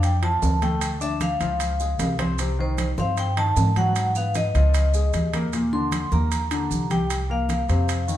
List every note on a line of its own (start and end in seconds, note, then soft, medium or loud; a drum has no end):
0.00 0.38 F2 medium
0.00 0.16 D4 medium
0.00 0.16 D5 medium
0.00 high conga soft
0.00 high timbale medium
0.00 maracas medium
0.04 0.22 G5 medium
0.22 0.54 F3 medium
0.22 0.55 F4 medium
0.22 0.64 A5 medium
0.22 high conga soft
0.22 high timbale medium
0.42 1.35 D2 medium
0.42 high conga medium
0.42 low timbale medium
0.42 maracas medium
0.62 0.94 A3 medium
0.62 0.94 A4 medium
0.62 0.99 G5 medium
0.62 high conga medium
0.62 high timbale medium
0.62 maracas soft
0.81 high conga soft
0.81 high timbale medium
0.81 maracas medium
1.01 1.33 D4 medium
1.01 1.33 D5 medium
1.01 1.22 E5 medium
1.01 high conga soft
1.01 maracas medium
1.21 2.16 F5 medium
1.21 high conga medium
1.21 high timbale medium
1.21 maracas medium
1.40 1.95 C#2 medium
1.40 1.73 F3 medium
1.40 1.73 F4 medium
1.40 high conga soft
1.40 high timbale medium
1.40 maracas soft
1.60 high conga soft
1.60 high timbale medium
1.60 maracas medium
1.80 2.12 G#3 medium
1.80 2.12 G#4 medium
1.80 high conga soft
1.80 maracas soft
1.99 2.92 C2 medium
1.99 high conga medium
1.99 high timbale medium
1.99 low timbale medium
1.99 maracas medium
2.19 2.35 C4 medium
2.19 2.35 C5 medium
2.19 high conga medium
2.19 high timbale medium
2.19 maracas soft
2.39 2.55 C3 medium
2.39 2.55 C4 medium
2.39 high timbale medium
2.39 maracas medium
2.58 2.91 D#3 medium
2.58 2.91 D#4 medium
2.58 2.96 C5 medium
2.58 high conga soft
2.78 high conga medium
2.78 high timbale medium
2.78 maracas medium
2.98 3.53 G2 medium
2.98 3.30 C4 medium
2.98 3.30 C5 medium
2.98 3.17 F5 medium
2.98 high conga medium
2.98 maracas soft
3.17 3.38 G5 loud
3.17 high conga soft
3.17 high timbale medium
3.17 maracas medium
3.37 3.69 D#3 medium
3.37 3.69 D#4 medium
3.37 3.74 A5 medium
3.37 high conga soft
3.37 high timbale medium
3.56 4.49 G#2 medium
3.56 high conga medium
3.56 low timbale medium
3.56 maracas medium
3.76 4.09 F#3 medium
3.76 4.09 F#4 medium
3.76 4.13 F#5 medium
3.76 high conga medium
3.76 high timbale medium
3.76 maracas soft
3.96 high conga soft
3.96 high timbale medium
3.96 maracas medium
4.15 4.48 B3 medium
4.15 4.48 B4 medium
4.15 4.25 F5 medium
4.15 high conga soft
4.15 maracas soft
4.35 5.30 D#5 medium
4.35 high conga medium
4.35 high timbale medium
4.35 maracas medium
4.54 5.10 C#2 medium
4.54 4.87 F3 medium
4.54 4.87 F4 medium
4.54 high conga soft
4.54 high timbale medium
4.54 maracas soft
4.74 high conga soft
4.74 high timbale medium
4.74 maracas medium
4.94 5.26 G#3 medium
4.94 5.27 G#4 medium
4.94 high conga soft
4.94 maracas medium
5.13 6.06 D#2 medium
5.13 high conga medium
5.13 high timbale medium
5.13 maracas medium
5.33 5.50 A#3 medium
5.33 5.50 A#4 medium
5.33 high conga medium
5.33 high timbale medium
5.33 maracas soft
5.53 5.69 A#2 medium
5.53 5.69 A#3 medium
5.53 high conga soft
5.53 high timbale medium
5.53 maracas medium
5.73 6.05 D3 medium
5.73 6.05 D4 medium
5.73 6.13 C6 medium
5.73 high conga soft
5.92 high conga medium
5.92 high timbale medium
5.92 maracas medium
6.12 6.67 D#2 medium
6.12 6.44 A#3 medium
6.12 6.44 A#4 medium
6.12 6.87 A#5 medium
6.12 high conga medium
6.12 maracas soft
6.32 high conga soft
6.32 high timbale medium
6.32 maracas medium
6.51 6.83 D3 medium
6.51 6.84 D4 medium
6.51 high conga soft
6.51 high timbale medium
6.51 maracas medium
6.71 7.63 C2 medium
6.71 high conga medium
6.71 maracas medium
6.90 7.23 G3 medium
6.90 7.23 G4 medium
6.90 7.31 G5 medium
6.90 high conga medium
6.90 high timbale medium
6.90 maracas soft
7.10 high timbale medium
7.10 maracas medium
7.29 7.62 A#3 medium
7.29 7.62 A#4 medium
7.29 8.17 F5 medium
7.29 high conga soft
7.49 high conga medium
7.49 high timbale medium
7.49 maracas medium
7.69 8.17 F2 medium
7.69 8.01 C3 medium
7.69 8.02 C4 medium
7.69 high conga soft
7.69 high timbale medium
7.69 maracas soft
7.89 high conga soft
7.89 high timbale medium
7.89 maracas medium
8.08 8.17 D#3 medium
8.08 8.17 D#4 medium
8.08 high conga soft
8.08 maracas medium